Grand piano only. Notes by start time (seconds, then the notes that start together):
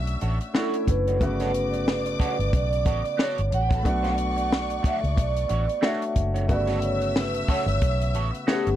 Already playing: A3 C#4 D4 F#4
0.54 A3 C#4 D4 E4
1.20 C#3 A3 B3 F#4
3.83 A3 B3 D4
3.87 F#4
5.82 A3 D4 F#4 C#5
6.48 C#3 A3 B3 F#4
8.47 A3 B3 C#4 F#5